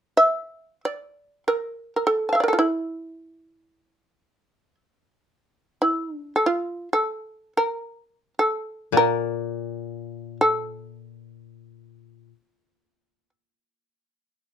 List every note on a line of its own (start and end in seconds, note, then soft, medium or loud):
0.17 0.80 E5 medium
0.85 1.43 D5 soft
1.48 1.93 A#4 soft
1.96 2.05 A#4 soft
2.07 2.43 A4 soft
2.29 2.48 F5 soft
2.29 2.32 A5 soft
2.35 2.40 E5 soft
2.40 2.61 A#4 soft
2.40 2.53 D5 soft
2.48 2.65 A4 soft
2.53 2.58 F4 soft
2.59 4.75 E4 soft
5.82 6.15 E4 soft
6.15 6.33 D4 soft
6.36 6.45 A4 soft
6.46 6.88 F4 medium
6.93 7.53 A4 medium
7.57 8.34 A#4 medium
8.39 8.93 A4 soft
8.92 12.30 A#2 soft
8.97 10.37 A#4 medium
10.41 13.29 A4 medium